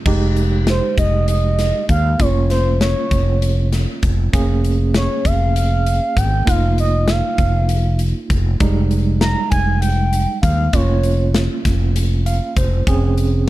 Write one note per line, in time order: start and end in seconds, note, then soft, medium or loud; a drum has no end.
0.06 0.80 F1 medium
0.06 2.16 G#3 medium
0.06 2.16 D#4 medium
0.06 2.16 G4 medium
0.06 kick loud
0.06 crash medium
0.37 closed hi-hat medium
0.67 0.96 C5 medium
0.67 snare medium
0.67 closed hi-hat medium
0.98 1.71 F1 medium
0.98 1.26 D#5 medium
0.98 kick medium
0.98 closed hi-hat medium
1.28 1.85 D#5 medium
1.28 closed hi-hat medium
1.59 snare soft
1.59 closed hi-hat medium
1.89 2.14 D#2 medium
1.89 2.22 F5 loud
1.89 kick medium
1.89 closed hi-hat medium
2.18 2.94 F1 medium
2.18 4.29 A#3 medium
2.18 4.29 C#4 soft
2.18 4.30 F4 medium
2.18 2.50 C#5 medium
2.18 kick medium
2.18 closed hi-hat medium
2.50 2.79 C5 medium
2.50 snare soft
2.50 closed hi-hat soft
2.80 3.68 C#5 medium
2.80 snare medium
2.80 closed hi-hat medium
3.11 3.85 F1 medium
3.11 kick medium
3.11 closed hi-hat medium
3.42 closed hi-hat medium
3.73 snare soft
3.73 closed hi-hat medium
4.03 4.27 F1 medium
4.03 kick medium
4.03 closed hi-hat medium
4.33 5.07 F1 medium
4.33 6.43 A#3 medium
4.33 6.43 C#4 medium
4.33 6.43 G#4 medium
4.33 kick loud
4.33 closed hi-hat medium
4.65 closed hi-hat medium
4.94 5.27 C#5 medium
4.94 snare loud
4.94 closed hi-hat medium
5.25 5.99 F1 medium
5.25 5.55 F5 medium
5.25 kick medium
5.25 closed hi-hat medium
5.55 6.19 F5 medium
5.55 closed hi-hat medium
5.86 closed hi-hat medium
6.17 6.41 G#1 medium
6.17 6.50 G5 loud
6.17 kick medium
6.17 closed hi-hat medium
6.45 7.21 F1 medium
6.45 8.55 A#3 medium
6.45 8.56 D#4 medium
6.45 8.57 F4 medium
6.45 6.78 F5 medium
6.45 kick loud
6.45 closed hi-hat medium
6.78 7.11 D#5 medium
6.78 closed hi-hat medium
7.08 8.00 F5 medium
7.08 snare medium
7.08 closed hi-hat medium
7.38 8.12 F1 medium
7.38 kick medium
7.38 closed hi-hat medium
7.69 closed hi-hat medium
7.99 closed hi-hat medium
8.30 8.55 F1 medium
8.30 kick medium
8.30 closed hi-hat medium
8.60 9.34 F1 medium
8.60 10.71 G3 medium
8.60 10.70 G#3 medium
8.60 10.70 D#4 medium
8.60 kick loud
8.60 closed hi-hat medium
8.91 closed hi-hat medium
9.21 9.49 A#5 medium
9.21 snare loud
9.21 closed hi-hat medium
9.50 10.25 F1 medium
9.50 9.79 G#5 medium
9.50 kick medium
9.50 closed hi-hat medium
9.81 10.39 G5 medium
9.81 closed hi-hat medium
10.13 closed hi-hat medium
10.42 10.67 D#2 medium
10.42 10.74 F5 medium
10.42 kick medium
10.42 closed hi-hat medium
10.73 11.47 F1 medium
10.73 12.83 A#3 medium
10.73 12.83 C#4 soft
10.73 12.84 F4 medium
10.73 11.42 C#5 medium
10.73 kick medium
10.73 closed hi-hat medium
11.03 closed hi-hat medium
11.35 snare loud
11.35 closed hi-hat medium
11.65 12.39 F1 medium
11.65 kick medium
11.65 snare soft
11.65 closed hi-hat medium
11.96 closed hi-hat medium
12.26 12.55 F5 medium
12.26 closed hi-hat medium
12.56 12.81 F1 medium
12.56 12.85 C5 medium
12.56 kick medium
12.56 closed hi-hat medium
12.87 13.49 F1 medium
12.87 13.49 C4 medium
12.87 13.49 C#4 medium
12.87 13.49 G#4 medium
12.87 kick loud
12.87 closed hi-hat medium
13.18 closed hi-hat medium